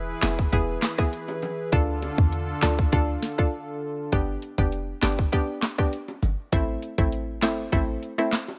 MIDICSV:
0, 0, Header, 1, 5, 480
1, 0, Start_track
1, 0, Tempo, 600000
1, 1381, Time_signature, 4, 2, 24, 8
1, 6870, End_track
2, 0, Start_track
2, 0, Title_t, "Analog synth pad"
2, 0, Program_c, 0, 89
2, 0, Note_on_c, 0, 52, 78
2, 0, Note_on_c, 0, 64, 87
2, 0, Note_on_c, 0, 68, 73
2, 0, Note_on_c, 0, 71, 86
2, 1349, Note_off_c, 0, 64, 0
2, 1362, Note_off_c, 0, 52, 0
2, 1362, Note_off_c, 0, 68, 0
2, 1362, Note_off_c, 0, 71, 0
2, 1380, Note_on_c, 0, 50, 80
2, 1380, Note_on_c, 0, 62, 74
2, 1381, Note_on_c, 0, 65, 71
2, 1381, Note_on_c, 0, 69, 84
2, 3282, Note_off_c, 0, 50, 0
2, 3282, Note_off_c, 0, 62, 0
2, 3282, Note_off_c, 0, 65, 0
2, 3282, Note_off_c, 0, 69, 0
2, 6870, End_track
3, 0, Start_track
3, 0, Title_t, "Synth pluck"
3, 0, Program_c, 1, 84
3, 0, Note_on_c, 1, 59, 95
3, 0, Note_on_c, 1, 64, 85
3, 0, Note_on_c, 1, 68, 106
3, 126, Note_off_c, 1, 59, 0
3, 127, Note_off_c, 1, 64, 0
3, 128, Note_off_c, 1, 68, 0
3, 179, Note_on_c, 1, 59, 78
3, 182, Note_on_c, 1, 64, 76
3, 184, Note_on_c, 1, 68, 91
3, 402, Note_off_c, 1, 59, 0
3, 403, Note_off_c, 1, 64, 0
3, 405, Note_off_c, 1, 68, 0
3, 419, Note_on_c, 1, 59, 94
3, 422, Note_on_c, 1, 64, 87
3, 424, Note_on_c, 1, 68, 107
3, 757, Note_off_c, 1, 59, 0
3, 758, Note_off_c, 1, 64, 0
3, 760, Note_off_c, 1, 68, 0
3, 786, Note_on_c, 1, 59, 79
3, 789, Note_on_c, 1, 64, 74
3, 791, Note_on_c, 1, 68, 87
3, 898, Note_off_c, 1, 59, 0
3, 900, Note_off_c, 1, 64, 0
3, 901, Note_off_c, 1, 68, 0
3, 1378, Note_on_c, 1, 62, 94
3, 1381, Note_on_c, 1, 65, 86
3, 1383, Note_on_c, 1, 69, 105
3, 2046, Note_off_c, 1, 62, 0
3, 2047, Note_off_c, 1, 65, 0
3, 2048, Note_off_c, 1, 69, 0
3, 2098, Note_on_c, 1, 62, 82
3, 2101, Note_on_c, 1, 65, 72
3, 2104, Note_on_c, 1, 69, 94
3, 2322, Note_off_c, 1, 62, 0
3, 2323, Note_off_c, 1, 65, 0
3, 2324, Note_off_c, 1, 69, 0
3, 2339, Note_on_c, 1, 62, 96
3, 2341, Note_on_c, 1, 65, 89
3, 2343, Note_on_c, 1, 69, 109
3, 2677, Note_off_c, 1, 62, 0
3, 2678, Note_off_c, 1, 65, 0
3, 2679, Note_off_c, 1, 69, 0
3, 2706, Note_on_c, 1, 62, 76
3, 2708, Note_on_c, 1, 65, 76
3, 2711, Note_on_c, 1, 69, 85
3, 2818, Note_off_c, 1, 62, 0
3, 2819, Note_off_c, 1, 65, 0
3, 2821, Note_off_c, 1, 69, 0
3, 3299, Note_on_c, 1, 59, 91
3, 3301, Note_on_c, 1, 62, 88
3, 3304, Note_on_c, 1, 67, 103
3, 3637, Note_off_c, 1, 59, 0
3, 3638, Note_off_c, 1, 62, 0
3, 3639, Note_off_c, 1, 67, 0
3, 3666, Note_on_c, 1, 59, 72
3, 3668, Note_on_c, 1, 62, 73
3, 3671, Note_on_c, 1, 67, 87
3, 3993, Note_off_c, 1, 59, 0
3, 3994, Note_off_c, 1, 62, 0
3, 3995, Note_off_c, 1, 67, 0
3, 4018, Note_on_c, 1, 59, 81
3, 4020, Note_on_c, 1, 62, 74
3, 4023, Note_on_c, 1, 67, 91
3, 4241, Note_off_c, 1, 59, 0
3, 4243, Note_off_c, 1, 62, 0
3, 4244, Note_off_c, 1, 67, 0
3, 4259, Note_on_c, 1, 59, 90
3, 4261, Note_on_c, 1, 62, 85
3, 4264, Note_on_c, 1, 67, 103
3, 4597, Note_off_c, 1, 59, 0
3, 4598, Note_off_c, 1, 62, 0
3, 4599, Note_off_c, 1, 67, 0
3, 4626, Note_on_c, 1, 59, 76
3, 4628, Note_on_c, 1, 62, 70
3, 4631, Note_on_c, 1, 67, 86
3, 4738, Note_off_c, 1, 59, 0
3, 4739, Note_off_c, 1, 62, 0
3, 4741, Note_off_c, 1, 67, 0
3, 5219, Note_on_c, 1, 57, 96
3, 5221, Note_on_c, 1, 60, 88
3, 5224, Note_on_c, 1, 64, 109
3, 5557, Note_off_c, 1, 57, 0
3, 5558, Note_off_c, 1, 60, 0
3, 5559, Note_off_c, 1, 64, 0
3, 5585, Note_on_c, 1, 57, 77
3, 5588, Note_on_c, 1, 60, 70
3, 5590, Note_on_c, 1, 64, 84
3, 5912, Note_off_c, 1, 57, 0
3, 5914, Note_off_c, 1, 60, 0
3, 5915, Note_off_c, 1, 64, 0
3, 5938, Note_on_c, 1, 57, 81
3, 5941, Note_on_c, 1, 60, 71
3, 5943, Note_on_c, 1, 64, 87
3, 6162, Note_off_c, 1, 57, 0
3, 6163, Note_off_c, 1, 60, 0
3, 6164, Note_off_c, 1, 64, 0
3, 6178, Note_on_c, 1, 57, 95
3, 6181, Note_on_c, 1, 60, 88
3, 6183, Note_on_c, 1, 64, 99
3, 6516, Note_off_c, 1, 57, 0
3, 6518, Note_off_c, 1, 60, 0
3, 6519, Note_off_c, 1, 64, 0
3, 6545, Note_on_c, 1, 57, 76
3, 6548, Note_on_c, 1, 60, 70
3, 6550, Note_on_c, 1, 64, 83
3, 6658, Note_off_c, 1, 57, 0
3, 6659, Note_off_c, 1, 60, 0
3, 6660, Note_off_c, 1, 64, 0
3, 6870, End_track
4, 0, Start_track
4, 0, Title_t, "808-style bass"
4, 0, Program_c, 2, 38
4, 0, Note_on_c, 2, 28, 90
4, 112, Note_off_c, 2, 28, 0
4, 181, Note_on_c, 2, 29, 91
4, 375, Note_off_c, 2, 29, 0
4, 422, Note_on_c, 2, 28, 110
4, 615, Note_off_c, 2, 28, 0
4, 1381, Note_on_c, 2, 38, 101
4, 1677, Note_off_c, 2, 38, 0
4, 1746, Note_on_c, 2, 40, 95
4, 2031, Note_off_c, 2, 40, 0
4, 2101, Note_on_c, 2, 38, 89
4, 2295, Note_off_c, 2, 38, 0
4, 2342, Note_on_c, 2, 38, 110
4, 2535, Note_off_c, 2, 38, 0
4, 3301, Note_on_c, 2, 31, 108
4, 3495, Note_off_c, 2, 31, 0
4, 3665, Note_on_c, 2, 29, 96
4, 3951, Note_off_c, 2, 29, 0
4, 4020, Note_on_c, 2, 31, 82
4, 4214, Note_off_c, 2, 31, 0
4, 4981, Note_on_c, 2, 31, 96
4, 5084, Note_off_c, 2, 31, 0
4, 5221, Note_on_c, 2, 33, 119
4, 5415, Note_off_c, 2, 33, 0
4, 5586, Note_on_c, 2, 33, 91
4, 5941, Note_on_c, 2, 31, 99
4, 5953, Note_off_c, 2, 33, 0
4, 6135, Note_off_c, 2, 31, 0
4, 6182, Note_on_c, 2, 33, 97
4, 6375, Note_off_c, 2, 33, 0
4, 6870, End_track
5, 0, Start_track
5, 0, Title_t, "Drums"
5, 180, Note_on_c, 9, 38, 119
5, 182, Note_on_c, 9, 42, 62
5, 182, Note_on_c, 9, 61, 88
5, 183, Note_on_c, 9, 39, 101
5, 260, Note_off_c, 9, 38, 0
5, 262, Note_off_c, 9, 42, 0
5, 262, Note_off_c, 9, 61, 0
5, 263, Note_off_c, 9, 39, 0
5, 310, Note_on_c, 9, 36, 105
5, 390, Note_off_c, 9, 36, 0
5, 421, Note_on_c, 9, 42, 75
5, 422, Note_on_c, 9, 36, 96
5, 422, Note_on_c, 9, 60, 73
5, 501, Note_off_c, 9, 42, 0
5, 502, Note_off_c, 9, 36, 0
5, 502, Note_off_c, 9, 60, 0
5, 659, Note_on_c, 9, 38, 117
5, 660, Note_on_c, 9, 42, 45
5, 662, Note_on_c, 9, 39, 95
5, 739, Note_off_c, 9, 38, 0
5, 740, Note_off_c, 9, 42, 0
5, 742, Note_off_c, 9, 39, 0
5, 787, Note_on_c, 9, 37, 78
5, 789, Note_on_c, 9, 36, 91
5, 867, Note_off_c, 9, 37, 0
5, 869, Note_off_c, 9, 36, 0
5, 903, Note_on_c, 9, 42, 72
5, 983, Note_off_c, 9, 42, 0
5, 1026, Note_on_c, 9, 60, 72
5, 1106, Note_off_c, 9, 60, 0
5, 1140, Note_on_c, 9, 42, 45
5, 1141, Note_on_c, 9, 61, 76
5, 1220, Note_off_c, 9, 42, 0
5, 1221, Note_off_c, 9, 61, 0
5, 1377, Note_on_c, 9, 60, 70
5, 1381, Note_on_c, 9, 36, 127
5, 1381, Note_on_c, 9, 42, 68
5, 1457, Note_off_c, 9, 60, 0
5, 1461, Note_off_c, 9, 36, 0
5, 1461, Note_off_c, 9, 42, 0
5, 1619, Note_on_c, 9, 42, 64
5, 1620, Note_on_c, 9, 60, 69
5, 1699, Note_off_c, 9, 42, 0
5, 1700, Note_off_c, 9, 60, 0
5, 1746, Note_on_c, 9, 36, 101
5, 1826, Note_off_c, 9, 36, 0
5, 1859, Note_on_c, 9, 42, 69
5, 1939, Note_off_c, 9, 42, 0
5, 2100, Note_on_c, 9, 38, 121
5, 2101, Note_on_c, 9, 61, 84
5, 2102, Note_on_c, 9, 42, 59
5, 2103, Note_on_c, 9, 39, 100
5, 2180, Note_off_c, 9, 38, 0
5, 2181, Note_off_c, 9, 61, 0
5, 2182, Note_off_c, 9, 42, 0
5, 2183, Note_off_c, 9, 39, 0
5, 2229, Note_on_c, 9, 36, 104
5, 2309, Note_off_c, 9, 36, 0
5, 2341, Note_on_c, 9, 42, 76
5, 2342, Note_on_c, 9, 36, 94
5, 2342, Note_on_c, 9, 60, 72
5, 2421, Note_off_c, 9, 42, 0
5, 2422, Note_off_c, 9, 36, 0
5, 2422, Note_off_c, 9, 60, 0
5, 2580, Note_on_c, 9, 38, 70
5, 2580, Note_on_c, 9, 42, 47
5, 2660, Note_off_c, 9, 38, 0
5, 2660, Note_off_c, 9, 42, 0
5, 2709, Note_on_c, 9, 36, 92
5, 2789, Note_off_c, 9, 36, 0
5, 3298, Note_on_c, 9, 60, 70
5, 3301, Note_on_c, 9, 36, 117
5, 3301, Note_on_c, 9, 42, 62
5, 3378, Note_off_c, 9, 60, 0
5, 3381, Note_off_c, 9, 36, 0
5, 3381, Note_off_c, 9, 42, 0
5, 3539, Note_on_c, 9, 42, 59
5, 3619, Note_off_c, 9, 42, 0
5, 3666, Note_on_c, 9, 36, 95
5, 3746, Note_off_c, 9, 36, 0
5, 3779, Note_on_c, 9, 42, 66
5, 3859, Note_off_c, 9, 42, 0
5, 4020, Note_on_c, 9, 38, 116
5, 4022, Note_on_c, 9, 42, 56
5, 4024, Note_on_c, 9, 39, 97
5, 4100, Note_off_c, 9, 38, 0
5, 4102, Note_off_c, 9, 42, 0
5, 4104, Note_off_c, 9, 39, 0
5, 4150, Note_on_c, 9, 36, 97
5, 4230, Note_off_c, 9, 36, 0
5, 4261, Note_on_c, 9, 42, 73
5, 4262, Note_on_c, 9, 36, 88
5, 4262, Note_on_c, 9, 60, 72
5, 4341, Note_off_c, 9, 42, 0
5, 4342, Note_off_c, 9, 36, 0
5, 4342, Note_off_c, 9, 60, 0
5, 4499, Note_on_c, 9, 38, 109
5, 4500, Note_on_c, 9, 42, 46
5, 4502, Note_on_c, 9, 39, 90
5, 4579, Note_off_c, 9, 38, 0
5, 4580, Note_off_c, 9, 42, 0
5, 4582, Note_off_c, 9, 39, 0
5, 4627, Note_on_c, 9, 37, 77
5, 4629, Note_on_c, 9, 36, 90
5, 4707, Note_off_c, 9, 37, 0
5, 4709, Note_off_c, 9, 36, 0
5, 4743, Note_on_c, 9, 42, 68
5, 4823, Note_off_c, 9, 42, 0
5, 4867, Note_on_c, 9, 60, 70
5, 4947, Note_off_c, 9, 60, 0
5, 4980, Note_on_c, 9, 42, 43
5, 4981, Note_on_c, 9, 61, 72
5, 5060, Note_off_c, 9, 42, 0
5, 5061, Note_off_c, 9, 61, 0
5, 5218, Note_on_c, 9, 60, 69
5, 5221, Note_on_c, 9, 36, 125
5, 5221, Note_on_c, 9, 42, 62
5, 5298, Note_off_c, 9, 60, 0
5, 5301, Note_off_c, 9, 36, 0
5, 5301, Note_off_c, 9, 42, 0
5, 5459, Note_on_c, 9, 42, 61
5, 5539, Note_off_c, 9, 42, 0
5, 5586, Note_on_c, 9, 36, 96
5, 5666, Note_off_c, 9, 36, 0
5, 5699, Note_on_c, 9, 42, 63
5, 5779, Note_off_c, 9, 42, 0
5, 5940, Note_on_c, 9, 38, 114
5, 5942, Note_on_c, 9, 42, 57
5, 5943, Note_on_c, 9, 39, 96
5, 6020, Note_off_c, 9, 38, 0
5, 6022, Note_off_c, 9, 42, 0
5, 6023, Note_off_c, 9, 39, 0
5, 6181, Note_on_c, 9, 42, 74
5, 6182, Note_on_c, 9, 36, 94
5, 6182, Note_on_c, 9, 60, 67
5, 6261, Note_off_c, 9, 42, 0
5, 6262, Note_off_c, 9, 36, 0
5, 6262, Note_off_c, 9, 60, 0
5, 6421, Note_on_c, 9, 42, 45
5, 6501, Note_off_c, 9, 42, 0
5, 6547, Note_on_c, 9, 37, 79
5, 6627, Note_off_c, 9, 37, 0
5, 6660, Note_on_c, 9, 38, 105
5, 6663, Note_on_c, 9, 39, 82
5, 6663, Note_on_c, 9, 42, 70
5, 6740, Note_off_c, 9, 38, 0
5, 6743, Note_off_c, 9, 39, 0
5, 6743, Note_off_c, 9, 42, 0
5, 6786, Note_on_c, 9, 60, 68
5, 6866, Note_off_c, 9, 60, 0
5, 6870, End_track
0, 0, End_of_file